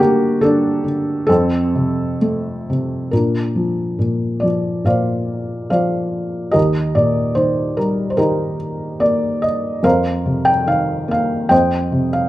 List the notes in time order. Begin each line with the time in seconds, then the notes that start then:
Already playing: A3 F#4 G4
0.00 D3 A#3
0.41 D3 D4 A4
0.84 D3
1.27 F2 C4 A4
1.75 C3
2.21 A3
2.70 C3
3.11 A#2 D4 F4 A#4
3.56 F3
3.99 A#2
4.40 F3 D5
4.85 A#2 C5 D5 F5
5.70 F3 C5 D5 F5
6.51 D#2 G4 A#4 D#5
6.95 A#2 D5
7.35 D#3 C5
7.77 G3 A#4
8.10 C5
8.17 D#3 D#4 G4 A#4
9.00 A#3 D5
9.42 D#5
9.83 F2 A#4 C5 F5
10.26 C3
10.45 G5
10.67 D#3 F5
11.08 A#3 F5
11.49 F2 C5 D#5 G5
11.92 C3
12.13 F5